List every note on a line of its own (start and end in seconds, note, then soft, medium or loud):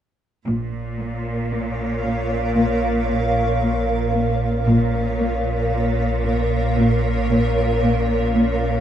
0.46 1.48 A#1 soft
0.46 4.65 A#1 soft
0.46 4.64 A#2 soft
0.46 0.79 A#2 soft
0.46 4.63 A#4 soft
0.46 4.64 C#5 soft
0.46 4.64 F5 soft
1.00 1.32 A#3 soft
1.52 1.84 A#2 soft
2.04 2.36 A#2 soft
2.57 2.89 A#2 soft
3.11 3.42 A#2 soft
3.62 3.94 A#2 soft
4.15 4.47 A#3 soft
4.66 8.80 A#1 soft
4.66 5.69 A#1 soft
4.66 8.80 A#2 soft
4.66 4.99 A#2 soft
4.66 8.80 A#4 soft
4.66 8.80 C#5 soft
4.66 8.80 F5 soft
5.19 5.51 A#3 soft
5.73 6.04 A#2 soft
6.25 6.57 A#2 soft
6.78 7.10 A#2 soft
7.31 7.62 A#2 soft
7.84 8.15 A#2 soft
8.35 8.67 A#3 soft